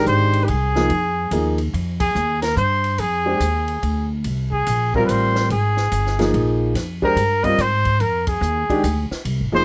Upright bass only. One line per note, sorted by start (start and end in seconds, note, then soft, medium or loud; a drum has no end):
0.06 0.47 G#1 medium
0.49 0.89 C2 medium
0.90 1.31 F2 medium
1.31 1.72 D#2 medium
1.73 2.14 F2 medium
2.15 2.56 D#2 medium
2.56 2.97 G2 medium
2.98 3.39 F2 medium
3.40 3.81 D#2 medium
3.82 4.23 D2 medium
4.25 4.65 C2 medium
4.67 5.07 A#1 medium
5.09 5.49 A1 medium
5.50 5.90 G#1 medium
5.92 6.32 G1 medium
6.34 6.74 A#1 medium
6.74 7.15 F2 medium
7.16 7.57 G2 medium
7.58 7.99 G#2 medium
8.00 8.41 F2 medium
8.41 8.67 D#2 medium
8.70 muted upright bass stroke soft
8.83 9.09 D2 medium
9.11 muted upright bass stroke soft
9.25 9.42 C2 medium
9.40 9.52 G#1 medium
9.53 9.65 F1 medium